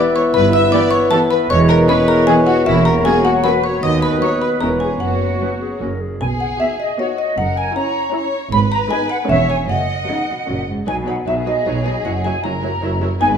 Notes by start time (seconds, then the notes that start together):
Already playing: B3 E4 B4 D5 E5 D6
0.14 C#5 C#6
0.34 G1 G2 B3 B4 B5
0.53 E5 E6
0.72 E3 B3 E4 G4 D5 D6
0.91 C#5 C#6
1.11 E3 B3 E4 G4 A4 A5
1.30 B4 B5
1.49 E1 E2 G#3 B3 E4 B4 C#5 C#6
1.69 A#4 A#5
1.88 E3 B3 C#4 G#4 B4 B5
2.07 A#4 A#5
2.26 E3 B3 C#4 G#4 G#5
2.45 F#4 F#5
2.65 E1 E2 F#3 A#3 E4 F#4 A#4 E5
2.85 A#4 A#5
3.05 F#3 A#3 C#4 F#4 G#4 G#5
3.24 F#4 F#5
3.43 F#3 A#3 C#4 F#4 B4 B5
3.63 C#5 C#6
3.82 D#2 B3 B4 D#5 D#6
4.02 B4 B5
4.21 F#3 B3 D#4 F#4 C#5 C#6
4.42 B4 B5
4.60 E1 E2 E3 G#3 B3 C#4 E4 A#4 C#5 A#5
4.80 G#4 G#5
5.00 F#1 F#2 F#3 F#4 F#5
5.41 F#3 B3 C#4 B4
5.61 G#4
5.80 F#1 F#2 F#3 A#3 C#4 A#4
6.01 G#4
6.20 B1 B2 G#4 G#5
6.40 F#5
6.60 B3 D#4 F#4 D#5 E5
6.80 D#5
6.98 B3 D#4 F#4 C#5 D#5
7.18 D#5
7.37 F#1 F#2 A#4 F#5
7.57 G#5
7.75 C#4 E4 C#5 A#5
8.14 C#4 E4 C#5
8.52 G#1 G#2 B4 B5
8.72 A#5
8.91 G#3 B3 D#4 B4 G#5
9.10 F#5
9.29 E1 E2 G#3 B3 C#4 B4 C#5 E5
9.49 G#5
9.68 F#1 F#2 D#5 F#5
10.08 C#3 F#3 B3 D#4 B4
10.29 B2
10.47 F#1 A#2 F#3 A#3 C#4 A#4
10.68 G#2
10.87 B1 B2 F#3 D#4 B4 G#5
11.07 F#3 D#4 B4 F#5
11.26 B1 B2 F#3 B3 D#4 G#4 B4 E5
11.46 F#3 D#4 B4 D#5
11.65 B1 B2 F#3 B3 D#4 B4 C#5
11.85 F#3 D#4 B4 D#5
12.05 F#1 F#2 F#3 E4 C#5 F#5
12.24 F#3 E4 C#5 G#5
12.43 F#1 F#2 F#3 C#4 E4 A#4 C#5 A#5
12.61 F#3 E4 C#5
12.80 F#1 F#2 F#3 C#4 E4 C#5
13.00 F#3 E4 C#5
13.19 G#1 G#2 B3 D#4 B4 G#5